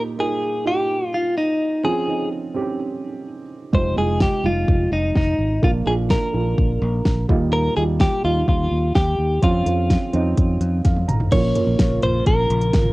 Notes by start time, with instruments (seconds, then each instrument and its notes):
Already playing: upright piano A#2 D#4 F4 G4
0.18 upright piano D#4 F4 A#4, clean electric guitar G#4
0.65 upright piano D#4 F4 G4, clean electric guitar G4
1.14 clean electric guitar F4
1.37 clean electric guitar D#4
1.84 upright piano F3 C4 C#4 F4, clean electric guitar G#4
2.07 upright piano C4 C#4 D#4
2.54 upright piano C4 C#4 G4
3.73 fingered electric bass F1, upright piano C3 G#3 D#4 F4, clean electric guitar C5, kick
3.96 fingered electric bass F1, upright piano G#3 D#4 F4, clean electric guitar G#4
4.20 clean electric guitar G4, kick, snare
4.44 fingered electric bass F1, upright piano G#3 D#4 F4, clean electric guitar F4
4.68 fingered electric bass F1, kick
4.92 fingered electric bass F1, clean electric guitar D#4
5.15 fingered electric bass F1, clean electric guitar D#4, kick, snare
5.38 fingered electric bass G#1
5.62 fingered electric bass A#1, upright piano A#2 F3 A#3 D4 F4, clean electric guitar F4, kick
5.86 fingered electric bass A#1, upright piano A#3 D4 F4, clean electric guitar G#4
6.10 clean electric guitar A#4, kick, snare
6.33 fingered electric bass A#1, upright piano A#3 D4 F4
6.58 fingered electric bass A#1, kick
6.82 fingered electric bass A#1
7.05 fingered electric bass A#1, kick, snare
7.28 fingered electric bass D#2, upright piano A#2 G3 D#4 F4, kick
7.53 clean electric guitar A#4
7.76 fingered electric bass D#2, upright piano G3 D#4 F4, clean electric guitar G#4
8.00 clean electric guitar G4, kick, snare
8.23 fingered electric bass D#2, upright piano G3 D#4 F4, clean electric guitar F4
8.48 fingered electric bass D#2, clean electric guitar F4, kick
8.71 fingered electric bass D#2
8.95 fingered electric bass D#2, clean electric guitar G4, kick, snare
9.18 fingered electric bass D#2
9.42 fingered electric bass F2, upright piano F3 C4 C#4 F4, clean electric guitar F4, kick, closed hi-hat
9.65 fingered electric bass F2, upright piano C4 C#4 F4, closed hi-hat
9.90 kick, snare, closed hi-hat
10.13 fingered electric bass F2, upright piano C4 C#4 D#4, closed hi-hat
10.38 fingered electric bass F2, kick, closed hi-hat
10.61 fingered electric bass F2, closed hi-hat
10.85 fingered electric bass F2, upright piano F5, kick, snare, closed hi-hat
10.96 high tom
11.08 fingered electric bass G#1, upright piano A#5, closed hi-hat, mid tom
11.20 floor tom
11.31 fingered electric bass A#1, upright piano A#2 F3 A#3 C#4 F4, analog synth pad C#3 F3 A#3 F4 A#4, clean electric guitar C#5, kick, closed hi-hat, crash
11.55 upright piano A#3 C#4 F4, closed hi-hat, floor tom
11.67 fingered electric bass A#1
11.79 fingered electric bass A#1, kick, snare, closed hi-hat
12.03 fingered electric bass A#1, clean electric guitar C5, closed hi-hat, floor tom
12.26 fingered electric bass A#1, clean electric guitar A#4, kick, closed hi-hat
12.50 fingered electric bass A#1, closed hi-hat
12.61 closed hi-hat
12.73 fingered electric bass G#1, kick, snare, closed hi-hat
12.85 floor tom